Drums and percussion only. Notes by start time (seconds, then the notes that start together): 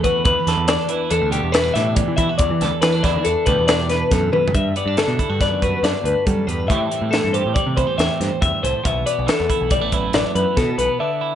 0.04 kick, closed hi-hat
0.25 kick, closed hi-hat
0.47 snare, closed hi-hat
0.68 snare, closed hi-hat
0.89 closed hi-hat
1.11 closed hi-hat
1.32 closed hi-hat
1.54 snare, closed hi-hat
1.75 snare, closed hi-hat
1.96 kick, closed hi-hat
2.18 kick, closed hi-hat
2.39 kick, closed hi-hat
2.61 snare, closed hi-hat
2.82 snare, closed hi-hat
3.04 kick, snare, closed hi-hat
3.25 closed hi-hat
3.46 kick, closed hi-hat
3.68 snare, closed hi-hat
3.89 snare, closed hi-hat
4.11 kick, snare, closed hi-hat
4.33 high tom
4.48 floor tom
4.55 kick, closed hi-hat
4.76 closed hi-hat
4.97 snare, closed hi-hat
5.19 kick, closed hi-hat
5.41 kick, snare, closed hi-hat
5.62 kick, closed hi-hat
5.84 snare, closed hi-hat
6.05 closed hi-hat
6.27 kick, closed hi-hat
6.49 closed hi-hat
6.70 kick, closed hi-hat
6.91 closed hi-hat
7.13 snare, closed hi-hat
7.34 closed hi-hat
7.56 kick, closed hi-hat
7.77 kick, closed hi-hat
7.99 snare, closed hi-hat
8.21 snare, closed hi-hat
8.42 kick, closed hi-hat
8.65 closed hi-hat
8.85 kick, closed hi-hat
9.07 closed hi-hat
9.28 snare, closed hi-hat
9.50 kick, closed hi-hat
9.71 kick, closed hi-hat
9.92 kick, closed hi-hat
10.13 snare, closed hi-hat
10.36 closed hi-hat
10.57 kick, snare, closed hi-hat
10.79 closed hi-hat